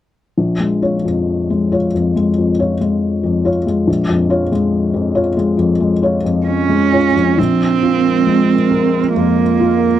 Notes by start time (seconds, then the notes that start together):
0.38 A#1
0.60 G#3
0.82 F4 C#5
1.05 F2
1.50 G#3
1.72 F4 C#5
1.95 F2
2.16 G#3
2.38 F2
2.59 F4 C#5
2.81 G#3
3.23 F2
3.45 F4 C#5
3.67 G#3
3.87 A#1
4.09 F2
4.30 F4 C#5
4.52 G#3
4.94 F2
5.15 F4 C#5
5.37 G#3
5.58 F2
5.80 G#3
6.03 F4 C#5
6.24 F2
6.47 C#4
6.69 G#3
6.92 F4 C#5
7.15 F2
7.36 A#1 G#3 C4 F4 A#4
7.83 F4
8.27 G#3
8.71 A#4
9.16 F2 A#3
9.60 F4